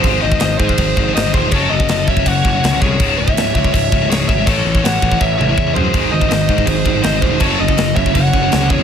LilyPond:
<<
  \new Staff \with { instrumentName = "Lead electric guitar" } { \time 4/4 \key gis \phrygian \tempo 4 = 163 bis'8 dis''8 dis''8 bis'4. dis''8 bis'8 | cis''8 dis''4 e''8 fis''4. cis''8~ | cis''8 e''4 e''8 e''4 cis''8 e''8 | cis''4 fis''4 e''8 e''4 bis'8~ |
bis'8 dis''8 dis''4 bis'4 dis''8 bis'8 | cis''8 dis''4 e''8 fis''4. cis''8 | }
  \new Staff \with { instrumentName = "Lead electric guitar" } { \time 4/4 \key gis \phrygian gis'8 bis'8 bis'8 gis'4. bis'8 gis'8 | a'8 a'4 cis''8 cis''4. gis'8~ | gis'8 cis''4 cis''8 cis''4 gis'8 cis''8 | a'4 cis''4 cis''8 cis''4 gis'8~ |
gis'8 bis'8 bis'4 gis'4 bis'8 gis'8 | a'8 a'4 cis''8 cis''4. gis'8 | }
  \new Staff \with { instrumentName = "Distorted electric guitar" } { \clef bass \time 4/4 \key gis \phrygian r1 | r1 | r1 | r1 |
<gis, dis gis>8 <gis, dis>16 <gis, dis>16 <gis, dis>8 <gis, dis>16 <gis, dis>16 <gis, dis>8 <gis, dis>16 <gis, dis>16 <gis, dis>16 <gis, dis>16 <gis, dis>16 <gis, dis>16 | <fis, cis fis>8 <fis, cis>16 <fis, cis>16 <fis, cis>8 <fis, cis>16 <fis, cis>16 <fis, cis>8 <fis, cis>16 <fis, cis>16 <fis, cis>16 <fis, cis>16 <fis, cis>16 <fis, cis>16 | }
  \new Staff \with { instrumentName = "Distorted electric guitar" } { \clef bass \time 4/4 \key gis \phrygian <gis, dis gis>8 <gis, dis>16 <gis, dis>16 <gis, dis>8 <gis, dis>16 <gis, dis>16 <gis, dis>8 <gis, dis>16 <gis, dis>16 <gis, dis>16 <gis, dis>16 <gis, dis>16 <gis, dis>16 | <fis, cis fis>8 <fis, cis>16 <fis, cis>16 <fis, cis>8 <fis, cis>16 <fis, cis>16 <fis, cis>8 <fis, cis>16 <fis, cis>16 <fis, cis>16 <fis, cis>16 <fis, cis>16 <fis, cis>16 | <cis, gis, cis>8 <cis, gis,>16 <cis, gis,>16 <cis, gis,>8 <cis, gis,>16 <cis, gis,>16 <cis, gis,>8 <cis, gis,>16 <cis, gis,>16 <cis, gis,>16 <cis, gis,>16 <cis, gis,>16 <cis, gis,>16 | <a, e a>8 <a, e>16 <a, e>16 <a, e>8 <a, e>16 <a, e>16 <a, e>8 <a, e>16 <a, e>16 <a, e>16 <a, e>16 <a, e>16 <a, e>16 |
<gis, dis gis>8 <gis, dis>16 <gis, dis>16 <gis, dis>8 <gis, dis>16 <gis, dis>16 <gis, dis>8 <gis, dis>16 <gis, dis>16 <gis, dis>16 <gis, dis>16 <gis, dis>16 <gis, dis>16 | <fis, cis fis>8 <fis, cis>16 <fis, cis>16 <fis, cis>8 <fis, cis>16 <fis, cis>16 <fis, cis>8 <fis, cis>16 <fis, cis>16 <fis, cis>16 <fis, cis>16 <fis, cis>16 cis16 | }
  \new Staff \with { instrumentName = "Picked electric bass" } { \clef bass \time 4/4 \key gis \phrygian gis,,8 gis,,8 gis,,8 gis,8 gis,,8 gis,,8 gis,,8 dis,,8 | fis,,8 fis,,8 fis,,8 fis,,8 fis,,8 fis,,8 cis,8 bis,,8 | cis,,8 cis,,8 cis,,8 cis,8 cis,,8 cis,,8 cis,,8 gis,,8 | a,,8 a,,8 a,,8 a,,8 a,,8 a,,8 e,8 fis,8 |
gis,,8 gis,,8 gis,,8 gis,8 gis,,8 gis,,8 gis,,8 dis,,8 | fis,,8 fis,,8 fis,,8 fis,,8 fis,,8 fis,,8 cis,8 e,8 | }
  \new DrumStaff \with { instrumentName = "Drums" } \drummode { \time 4/4 <cymc bd>8. bd16 <cymc sn>8 bd16 bd16 <cymc bd>8 bd8 <cymc sn>8 bd8 | <cymc bd>8. bd16 <cymc sn>8 bd16 bd16 <cymc bd>8 bd8 <cymc sn>8 bd8 | <cymc bd>8. bd16 <cymc sn>8 bd16 bd16 <cymc bd>8 bd8 <cymc sn>8 bd8 | <cymc bd>8. bd16 <cymc sn>8 bd16 bd16 bd8 toml8 bd8 tomfh8 |
<cymc bd>8. bd16 <cymc sn>8 bd16 bd16 <cymc bd>8 bd8 <cymc sn>8 bd8 | <cymc bd>8. bd16 <cymc sn>8 bd16 bd16 <cymc bd>8 bd8 <cymc sn>8 bd8 | }
>>